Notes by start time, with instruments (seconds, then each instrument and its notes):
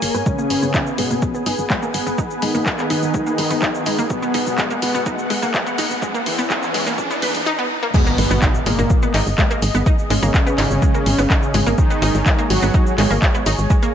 Already playing: analog polysynth A#3, analog synth pad G#4 C#5 G#5, supersaw synth A#4
0.02 analog synth bass G#1, open hi-hat, shaker
0.14 analog synth bass G#2, synth arpeggio sound B3, shaker
0.26 analog polysynth C#3, synth arpeggio sound G#3, analog synth pad B3 G#4 B4, supersaw synth C#4, kick, riser, shaker
0.39 synth arpeggio sound A#3, shaker
0.50 analog synth bass G#1, open hi-hat, shaker
0.63 analog synth bass G#1, synth arpeggio sound B3, shaker
0.74 synth arpeggio sound D#4, kick, clap, shaker
0.87 shaker
0.98 analog synth bass G#1, analog polysynth B2, synth arpeggio sound G#3, supersaw synth B3, open hi-hat, shaker
1.11 analog synth bass G#1, synth arpeggio sound A#3, shaker
1.22 kick, shaker
1.35 synth arpeggio sound B3, shaker
1.46 analog synth bass G#1, synth arpeggio sound D#4, open hi-hat, shaker
1.58 analog synth bass G#1, shaker
1.70 synth arpeggio sound G#3, kick, clap, shaker
1.83 synth arpeggio sound A#3, shaker
1.94 analog synth bass G#1, open hi-hat, shaker
2.07 analog synth bass G#1, synth arpeggio sound B3, shaker
2.18 synth arpeggio sound D#4, kick, shaker
2.31 shaker
2.42 analog synth bass G#1, analog polysynth D#3, synth arpeggio sound G#3, supersaw synth D#4, open hi-hat, shaker
2.55 analog synth bass G#1, synth arpeggio sound A#3, shaker
2.66 kick, clap, shaker
2.79 synth arpeggio sound B3, clap, shaker
2.90 analog synth bass G#1, synth arpeggio sound D#4, open hi-hat, shaker
3.03 analog synth bass G#1, shaker
3.14 synth arpeggio sound G#3, kick, shaker
3.27 synth arpeggio sound A#3, shaker
3.38 analog synth bass G#1, open hi-hat, shaker
3.51 analog synth bass G#1, synth arpeggio sound B3, open hi-hat, shaker
3.62 synth arpeggio sound D#4, kick, clap, shaker
3.75 shaker
3.86 analog synth bass G#1, synth arpeggio sound G#3, open hi-hat, shaker
3.99 analog synth bass G#1, synth arpeggio sound A#3, shaker
4.10 analog polysynth B2, supersaw synth B3, analog synth pad F#5, kick, shaker
4.22 synth arpeggio sound B3, shaker
4.34 analog synth bass G#1, synth arpeggio sound D#4, open hi-hat, shaker
4.47 analog synth bass G#1, shaker
4.58 synth arpeggio sound G#3, kick, clap, shaker
4.70 synth arpeggio sound A#3, shaker
4.82 analog synth bass G#1, analog polysynth B2, supersaw synth B3, open hi-hat, shaker
4.94 analog synth bass G#1, synth arpeggio sound B3, shaker
5.06 synth arpeggio sound D#4, kick, shaker
5.19 shaker
5.30 analog synth bass G#1, synth arpeggio sound G#3, open hi-hat, shaker
5.42 analog synth bass G#1, synth arpeggio sound A#3, shaker
5.54 kick, clap, shaker
5.67 synth arpeggio sound B3, shaker
5.78 analog synth bass G#1, synth arpeggio sound D#4, open hi-hat, shaker
5.91 analog synth bass G#1, shaker
6.02 synth arpeggio sound G#3, kick, shaker
6.14 synth arpeggio sound A#3, shaker
6.26 analog synth bass G#1, analog polysynth E2, supersaw synth E3, open hi-hat, shaker
6.39 analog synth bass G#1, synth arpeggio sound B3, shaker
6.50 synth arpeggio sound D#4, kick, clap, shaker
6.63 clap, shaker
6.74 analog synth bass G#1, synth arpeggio sound G#3, open hi-hat, shaker
6.87 analog synth bass G#1, synth arpeggio sound A#3, shaker
6.98 kick, shaker
7.11 synth arpeggio sound B3, shaker
7.22 analog synth bass G#1, synth arpeggio sound B4, open hi-hat, shaker
7.35 analog synth bass G#1, open hi-hat, shaker
7.46 synth arpeggio sound D#4
7.59 synth arpeggio sound B3
7.83 synth arpeggio sound A#3
7.94 analog polysynth B2, synth arpeggio sound G#3 G#4, analog synth pad G#3 G#4 D#5 G#5, supersaw synth B3, kick, crash, impact, shaker
8.07 synth arpeggio sound A#3 A#4, shaker
8.18 analog synth bass G#1, open hi-hat, shaker
8.31 analog synth bass G#1, synth arpeggio sound B3 B4, shaker
8.42 synth arpeggio sound D#4 D#5, kick, clap, shaker
8.55 shaker
8.66 analog synth bass G#1, analog polysynth A#2, synth arpeggio sound G#3 G#4, supersaw synth A#3, open hi-hat, shaker
8.79 analog synth bass G#1, synth arpeggio sound A#3 A#4, shaker
8.90 kick, shaker
9.02 synth arpeggio sound B3 B4, shaker
9.14 analog synth bass G#1, synth arpeggio sound D#4 D#5, clap, open hi-hat, shaker
9.27 analog synth bass G#1, shaker
9.38 synth arpeggio sound G#3 G#4, kick, clap, shaker
9.51 synth arpeggio sound A#3 A#4, shaker
9.62 analog synth bass G#1, open hi-hat, shaker
9.75 analog synth bass G#1, synth arpeggio sound B3 B4, shaker
9.86 synth arpeggio sound D#4 D#5, kick, shaker
9.99 shaker
10.10 analog synth bass G#1, analog polysynth C#3, synth arpeggio sound G#3 G#4, supersaw synth C#4, open hi-hat, shaker
10.23 analog synth bass G#1, synth arpeggio sound A#3 A#4, shaker
10.34 kick, clap, shaker
10.47 synth arpeggio sound B3 B4, shaker
10.58 analog synth bass G#1, synth arpeggio sound D#4 D#5, clap, open hi-hat, shaker
10.71 analog synth bass G#1, shaker
10.82 synth arpeggio sound G#3 G#4, kick, shaker
10.94 synth arpeggio sound A#3 A#4, shaker
11.06 analog synth bass G#1, open hi-hat, shaker
11.18 analog synth bass G#1, synth arpeggio sound B3 B4, shaker
11.30 synth arpeggio sound D#4 D#5, kick, clap, shaker
11.43 shaker
11.54 analog synth bass G#1, synth arpeggio sound G#3 G#4, open hi-hat, shaker
11.66 analog synth bass G#1, synth arpeggio sound A#3 A#4, shaker
11.78 analog polysynth D#3, supersaw synth D#4, analog synth pad C#5, kick, shaker
11.90 synth arpeggio sound B3 B4, shaker
12.02 analog synth bass G#1, synth arpeggio sound D#4 D#5, open hi-hat, shaker
12.14 analog synth bass G#1, shaker
12.26 synth arpeggio sound G#3 G#4, kick, clap, shaker
12.39 synth arpeggio sound A#3 A#4, shaker
12.50 analog synth bass G#1, analog polysynth F#3, supersaw synth F#4, open hi-hat, shaker
12.62 analog synth bass G#1, synth arpeggio sound B3 B4, shaker
12.74 synth arpeggio sound D#4 D#5, kick, shaker
12.87 shaker
12.98 analog synth bass G#1, synth arpeggio sound G#3 G#4, clap, open hi-hat, shaker
13.10 analog synth bass G#1, synth arpeggio sound A#3 A#4, shaker
13.22 kick, clap, shaker
13.35 synth arpeggio sound B3 B4, shaker
13.46 analog synth bass G#1, synth arpeggio sound D#4 D#5, open hi-hat, shaker
13.59 analog synth bass G#1, shaker
13.70 synth arpeggio sound G#3 G#4, kick, shaker
13.83 synth arpeggio sound A#3 A#4, shaker